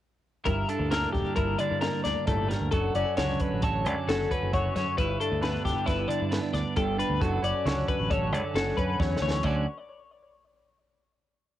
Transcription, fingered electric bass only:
0, 0, Header, 1, 2, 480
1, 0, Start_track
1, 0, Key_signature, 2, "major"
1, 0, Tempo, 448766
1, 496, Time_signature, 5, 2, 24, 8
1, 12403, End_track
2, 0, Start_track
2, 0, Title_t, "Fingered electric bass"
2, 0, Program_c, 0, 33
2, 493, Note_on_c, 0, 31, 80
2, 677, Note_off_c, 0, 31, 0
2, 849, Note_on_c, 0, 38, 82
2, 1128, Note_off_c, 0, 38, 0
2, 1225, Note_on_c, 0, 28, 73
2, 1315, Note_off_c, 0, 28, 0
2, 1467, Note_on_c, 0, 31, 80
2, 1649, Note_off_c, 0, 31, 0
2, 1832, Note_on_c, 0, 43, 74
2, 2013, Note_off_c, 0, 43, 0
2, 2195, Note_on_c, 0, 38, 79
2, 2284, Note_off_c, 0, 38, 0
2, 2429, Note_on_c, 0, 31, 91
2, 2704, Note_off_c, 0, 31, 0
2, 2787, Note_on_c, 0, 38, 69
2, 2880, Note_off_c, 0, 38, 0
2, 2915, Note_on_c, 0, 30, 84
2, 3097, Note_off_c, 0, 30, 0
2, 3155, Note_on_c, 0, 30, 74
2, 3246, Note_off_c, 0, 30, 0
2, 3402, Note_on_c, 0, 37, 83
2, 3582, Note_off_c, 0, 37, 0
2, 3766, Note_on_c, 0, 33, 69
2, 4129, Note_off_c, 0, 33, 0
2, 4129, Note_on_c, 0, 37, 84
2, 4216, Note_off_c, 0, 37, 0
2, 4360, Note_on_c, 0, 30, 81
2, 4542, Note_off_c, 0, 30, 0
2, 4734, Note_on_c, 0, 30, 75
2, 5003, Note_off_c, 0, 30, 0
2, 5087, Note_on_c, 0, 42, 77
2, 5176, Note_off_c, 0, 42, 0
2, 5333, Note_on_c, 0, 31, 85
2, 5510, Note_off_c, 0, 31, 0
2, 5686, Note_on_c, 0, 38, 77
2, 5957, Note_off_c, 0, 38, 0
2, 6043, Note_on_c, 0, 28, 80
2, 6133, Note_off_c, 0, 28, 0
2, 6286, Note_on_c, 0, 31, 82
2, 6466, Note_off_c, 0, 31, 0
2, 6648, Note_on_c, 0, 43, 74
2, 6826, Note_off_c, 0, 43, 0
2, 6991, Note_on_c, 0, 38, 86
2, 7085, Note_off_c, 0, 38, 0
2, 7238, Note_on_c, 0, 31, 86
2, 7510, Note_off_c, 0, 31, 0
2, 7591, Note_on_c, 0, 38, 74
2, 7684, Note_off_c, 0, 38, 0
2, 7716, Note_on_c, 0, 30, 90
2, 7897, Note_off_c, 0, 30, 0
2, 7946, Note_on_c, 0, 30, 71
2, 8040, Note_off_c, 0, 30, 0
2, 8188, Note_on_c, 0, 37, 73
2, 8371, Note_off_c, 0, 37, 0
2, 8553, Note_on_c, 0, 33, 75
2, 8904, Note_off_c, 0, 33, 0
2, 8904, Note_on_c, 0, 37, 75
2, 8996, Note_off_c, 0, 37, 0
2, 9138, Note_on_c, 0, 30, 82
2, 9323, Note_off_c, 0, 30, 0
2, 9391, Note_on_c, 0, 42, 67
2, 9604, Note_off_c, 0, 42, 0
2, 9622, Note_on_c, 0, 40, 75
2, 9838, Note_off_c, 0, 40, 0
2, 9848, Note_on_c, 0, 38, 75
2, 10070, Note_off_c, 0, 38, 0
2, 10101, Note_on_c, 0, 38, 79
2, 10324, Note_off_c, 0, 38, 0
2, 12403, End_track
0, 0, End_of_file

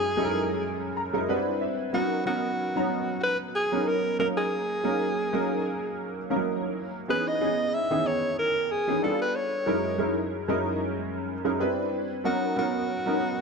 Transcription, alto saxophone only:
0, 0, Header, 1, 2, 480
1, 0, Start_track
1, 0, Tempo, 644468
1, 1444, Time_signature, 4, 2, 24, 8
1, 9989, End_track
2, 0, Start_track
2, 0, Title_t, "Alto saxophone"
2, 0, Program_c, 0, 65
2, 0, Note_on_c, 0, 68, 87
2, 823, Note_off_c, 0, 68, 0
2, 1447, Note_on_c, 0, 66, 94
2, 1669, Note_off_c, 0, 66, 0
2, 1688, Note_on_c, 0, 66, 84
2, 2376, Note_off_c, 0, 66, 0
2, 2409, Note_on_c, 0, 71, 101
2, 2516, Note_off_c, 0, 71, 0
2, 2647, Note_on_c, 0, 68, 89
2, 2889, Note_on_c, 0, 70, 87
2, 2901, Note_off_c, 0, 68, 0
2, 3120, Note_off_c, 0, 70, 0
2, 3124, Note_on_c, 0, 70, 84
2, 3183, Note_off_c, 0, 70, 0
2, 3255, Note_on_c, 0, 68, 88
2, 4665, Note_off_c, 0, 68, 0
2, 5291, Note_on_c, 0, 71, 100
2, 5420, Note_on_c, 0, 75, 90
2, 5431, Note_off_c, 0, 71, 0
2, 5768, Note_on_c, 0, 76, 92
2, 5779, Note_off_c, 0, 75, 0
2, 6010, Note_on_c, 0, 73, 94
2, 6021, Note_off_c, 0, 76, 0
2, 6243, Note_off_c, 0, 73, 0
2, 6248, Note_on_c, 0, 70, 91
2, 6491, Note_on_c, 0, 68, 84
2, 6502, Note_off_c, 0, 70, 0
2, 6727, Note_off_c, 0, 68, 0
2, 6731, Note_on_c, 0, 69, 70
2, 6848, Note_off_c, 0, 69, 0
2, 6863, Note_on_c, 0, 71, 85
2, 6969, Note_on_c, 0, 73, 78
2, 6980, Note_off_c, 0, 71, 0
2, 7686, Note_off_c, 0, 73, 0
2, 9127, Note_on_c, 0, 66, 94
2, 9348, Note_off_c, 0, 66, 0
2, 9374, Note_on_c, 0, 66, 84
2, 9989, Note_off_c, 0, 66, 0
2, 9989, End_track
0, 0, End_of_file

